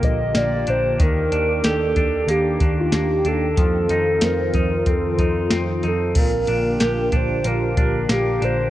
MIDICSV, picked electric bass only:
0, 0, Header, 1, 2, 480
1, 0, Start_track
1, 0, Key_signature, -2, "major"
1, 0, Tempo, 645161
1, 743, Time_signature, 4, 2, 24, 8
1, 6473, End_track
2, 0, Start_track
2, 0, Title_t, "Picked electric bass"
2, 0, Program_c, 0, 34
2, 23, Note_on_c, 0, 34, 79
2, 234, Note_off_c, 0, 34, 0
2, 264, Note_on_c, 0, 34, 85
2, 475, Note_off_c, 0, 34, 0
2, 507, Note_on_c, 0, 34, 92
2, 717, Note_off_c, 0, 34, 0
2, 743, Note_on_c, 0, 39, 88
2, 954, Note_off_c, 0, 39, 0
2, 980, Note_on_c, 0, 39, 85
2, 1193, Note_off_c, 0, 39, 0
2, 1222, Note_on_c, 0, 39, 91
2, 1434, Note_off_c, 0, 39, 0
2, 1461, Note_on_c, 0, 39, 76
2, 1673, Note_off_c, 0, 39, 0
2, 1695, Note_on_c, 0, 39, 75
2, 1910, Note_off_c, 0, 39, 0
2, 1943, Note_on_c, 0, 39, 80
2, 2154, Note_off_c, 0, 39, 0
2, 2178, Note_on_c, 0, 39, 86
2, 2392, Note_off_c, 0, 39, 0
2, 2417, Note_on_c, 0, 39, 85
2, 2631, Note_off_c, 0, 39, 0
2, 2661, Note_on_c, 0, 41, 103
2, 2873, Note_off_c, 0, 41, 0
2, 2897, Note_on_c, 0, 41, 83
2, 3111, Note_off_c, 0, 41, 0
2, 3137, Note_on_c, 0, 41, 68
2, 3351, Note_off_c, 0, 41, 0
2, 3379, Note_on_c, 0, 41, 73
2, 3592, Note_off_c, 0, 41, 0
2, 3621, Note_on_c, 0, 41, 69
2, 3833, Note_off_c, 0, 41, 0
2, 3858, Note_on_c, 0, 41, 88
2, 4071, Note_off_c, 0, 41, 0
2, 4103, Note_on_c, 0, 41, 86
2, 4314, Note_off_c, 0, 41, 0
2, 4343, Note_on_c, 0, 41, 81
2, 4554, Note_off_c, 0, 41, 0
2, 4579, Note_on_c, 0, 34, 93
2, 4792, Note_off_c, 0, 34, 0
2, 4819, Note_on_c, 0, 34, 81
2, 5032, Note_off_c, 0, 34, 0
2, 5063, Note_on_c, 0, 34, 77
2, 5274, Note_off_c, 0, 34, 0
2, 5300, Note_on_c, 0, 34, 67
2, 5512, Note_off_c, 0, 34, 0
2, 5543, Note_on_c, 0, 34, 80
2, 5754, Note_off_c, 0, 34, 0
2, 5784, Note_on_c, 0, 34, 85
2, 5995, Note_off_c, 0, 34, 0
2, 6023, Note_on_c, 0, 34, 86
2, 6234, Note_off_c, 0, 34, 0
2, 6266, Note_on_c, 0, 34, 94
2, 6473, Note_off_c, 0, 34, 0
2, 6473, End_track
0, 0, End_of_file